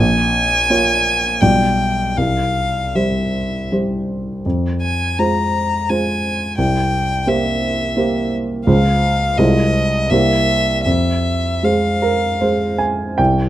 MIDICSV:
0, 0, Header, 1, 3, 480
1, 0, Start_track
1, 0, Key_signature, -4, "minor"
1, 0, Tempo, 711744
1, 952, Tempo, 761421
1, 1430, Time_signature, 3, 2, 24, 8
1, 2392, Tempo, 739827
1, 3352, Tempo, 696056
1, 5272, Tempo, 715137
1, 6712, Tempo, 767263
1, 8831, End_track
2, 0, Start_track
2, 0, Title_t, "Violin"
2, 0, Program_c, 0, 40
2, 0, Note_on_c, 0, 80, 79
2, 951, Note_on_c, 0, 79, 56
2, 961, Note_off_c, 0, 80, 0
2, 1428, Note_on_c, 0, 77, 55
2, 1438, Note_off_c, 0, 79, 0
2, 1921, Note_on_c, 0, 76, 41
2, 1931, Note_off_c, 0, 77, 0
2, 2395, Note_off_c, 0, 76, 0
2, 3118, Note_on_c, 0, 80, 53
2, 3358, Note_on_c, 0, 82, 55
2, 3369, Note_off_c, 0, 80, 0
2, 3845, Note_on_c, 0, 80, 60
2, 3855, Note_off_c, 0, 82, 0
2, 4316, Note_off_c, 0, 80, 0
2, 4320, Note_on_c, 0, 79, 52
2, 4801, Note_on_c, 0, 76, 57
2, 4811, Note_off_c, 0, 79, 0
2, 5511, Note_off_c, 0, 76, 0
2, 5743, Note_on_c, 0, 77, 60
2, 6223, Note_on_c, 0, 75, 67
2, 6233, Note_off_c, 0, 77, 0
2, 6706, Note_on_c, 0, 76, 70
2, 6716, Note_off_c, 0, 75, 0
2, 7172, Note_off_c, 0, 76, 0
2, 7175, Note_on_c, 0, 76, 54
2, 7674, Note_on_c, 0, 77, 49
2, 7683, Note_off_c, 0, 76, 0
2, 8401, Note_off_c, 0, 77, 0
2, 8831, End_track
3, 0, Start_track
3, 0, Title_t, "Grand piano"
3, 0, Program_c, 1, 0
3, 0, Control_c, 1, 64, 127
3, 0, Note_on_c, 1, 34, 54
3, 5, Control_c, 1, 64, 0
3, 95, Control_c, 1, 64, 127
3, 452, Note_off_c, 1, 34, 0
3, 472, Note_on_c, 1, 58, 35
3, 476, Note_on_c, 1, 65, 38
3, 479, Note_on_c, 1, 73, 40
3, 928, Note_off_c, 1, 58, 0
3, 930, Note_off_c, 1, 65, 0
3, 931, Note_off_c, 1, 73, 0
3, 954, Note_on_c, 1, 55, 31
3, 956, Note_on_c, 1, 35, 43
3, 957, Note_on_c, 1, 65, 29
3, 961, Note_on_c, 1, 74, 31
3, 966, Control_c, 1, 64, 0
3, 1068, Control_c, 1, 64, 127
3, 1406, Note_off_c, 1, 55, 0
3, 1407, Note_off_c, 1, 65, 0
3, 1409, Note_off_c, 1, 74, 0
3, 1418, Note_off_c, 1, 35, 0
3, 1435, Note_on_c, 1, 36, 38
3, 1442, Control_c, 1, 64, 0
3, 1542, Control_c, 1, 64, 127
3, 1902, Note_off_c, 1, 36, 0
3, 1924, Note_on_c, 1, 55, 28
3, 1925, Note_on_c, 1, 67, 31
3, 1926, Note_on_c, 1, 72, 31
3, 2371, Note_off_c, 1, 55, 0
3, 2371, Note_off_c, 1, 67, 0
3, 2372, Note_off_c, 1, 72, 0
3, 2407, Note_on_c, 1, 55, 25
3, 2409, Note_on_c, 1, 67, 26
3, 2413, Note_on_c, 1, 72, 29
3, 2856, Note_off_c, 1, 55, 0
3, 2857, Note_off_c, 1, 67, 0
3, 2860, Note_off_c, 1, 72, 0
3, 2886, Note_on_c, 1, 41, 38
3, 2888, Control_c, 1, 64, 0
3, 3004, Control_c, 1, 64, 127
3, 3343, Note_off_c, 1, 41, 0
3, 3361, Note_on_c, 1, 56, 32
3, 3362, Note_on_c, 1, 65, 30
3, 3366, Note_on_c, 1, 72, 33
3, 3820, Note_off_c, 1, 56, 0
3, 3821, Note_off_c, 1, 65, 0
3, 3823, Note_off_c, 1, 72, 0
3, 3851, Note_on_c, 1, 56, 29
3, 3851, Note_on_c, 1, 65, 30
3, 3856, Note_on_c, 1, 72, 34
3, 4293, Note_off_c, 1, 56, 0
3, 4293, Note_off_c, 1, 65, 0
3, 4296, Note_off_c, 1, 72, 0
3, 4322, Note_on_c, 1, 36, 41
3, 4330, Control_c, 1, 64, 0
3, 4423, Control_c, 1, 64, 127
3, 4780, Note_off_c, 1, 36, 0
3, 4794, Note_on_c, 1, 58, 35
3, 4797, Note_on_c, 1, 67, 33
3, 4799, Note_on_c, 1, 72, 35
3, 5245, Note_off_c, 1, 58, 0
3, 5246, Note_off_c, 1, 67, 0
3, 5247, Note_off_c, 1, 72, 0
3, 5276, Note_on_c, 1, 58, 33
3, 5279, Note_on_c, 1, 72, 36
3, 5280, Note_on_c, 1, 67, 36
3, 5720, Note_off_c, 1, 58, 0
3, 5722, Note_off_c, 1, 67, 0
3, 5722, Note_off_c, 1, 72, 0
3, 5747, Note_on_c, 1, 37, 49
3, 5748, Note_on_c, 1, 56, 38
3, 5751, Note_on_c, 1, 65, 35
3, 5757, Control_c, 1, 64, 0
3, 5758, Note_on_c, 1, 72, 36
3, 5848, Control_c, 1, 64, 127
3, 6197, Note_off_c, 1, 56, 0
3, 6198, Note_off_c, 1, 65, 0
3, 6202, Note_off_c, 1, 72, 0
3, 6209, Note_off_c, 1, 37, 0
3, 6227, Note_on_c, 1, 56, 37
3, 6228, Note_on_c, 1, 36, 53
3, 6233, Note_on_c, 1, 65, 38
3, 6234, Control_c, 1, 64, 0
3, 6236, Note_on_c, 1, 72, 39
3, 6339, Control_c, 1, 64, 127
3, 6687, Note_off_c, 1, 56, 0
3, 6689, Note_off_c, 1, 65, 0
3, 6691, Note_off_c, 1, 72, 0
3, 6699, Note_off_c, 1, 36, 0
3, 6714, Note_on_c, 1, 36, 46
3, 6714, Note_on_c, 1, 58, 40
3, 6720, Note_on_c, 1, 67, 35
3, 6722, Note_on_c, 1, 72, 40
3, 6723, Control_c, 1, 64, 0
3, 6833, Control_c, 1, 64, 127
3, 7160, Note_off_c, 1, 58, 0
3, 7163, Note_off_c, 1, 67, 0
3, 7164, Note_off_c, 1, 72, 0
3, 7171, Note_off_c, 1, 36, 0
3, 7182, Note_on_c, 1, 41, 44
3, 7194, Control_c, 1, 64, 0
3, 7321, Control_c, 1, 64, 127
3, 7658, Note_off_c, 1, 41, 0
3, 7667, Note_on_c, 1, 56, 35
3, 7671, Note_on_c, 1, 68, 33
3, 7675, Note_on_c, 1, 72, 36
3, 7911, Note_on_c, 1, 70, 53
3, 8128, Note_off_c, 1, 56, 0
3, 8130, Note_off_c, 1, 68, 0
3, 8132, Note_off_c, 1, 72, 0
3, 8154, Note_off_c, 1, 70, 0
3, 8154, Note_on_c, 1, 72, 49
3, 8157, Note_on_c, 1, 56, 30
3, 8165, Note_on_c, 1, 68, 29
3, 8388, Note_on_c, 1, 80, 57
3, 8616, Note_off_c, 1, 56, 0
3, 8621, Note_off_c, 1, 68, 0
3, 8621, Note_off_c, 1, 72, 0
3, 8634, Note_on_c, 1, 79, 78
3, 8635, Note_off_c, 1, 80, 0
3, 8641, Note_on_c, 1, 36, 44
3, 8652, Control_c, 1, 64, 0
3, 8749, Control_c, 1, 64, 127
3, 8831, Note_off_c, 1, 36, 0
3, 8831, Note_off_c, 1, 79, 0
3, 8831, End_track
0, 0, End_of_file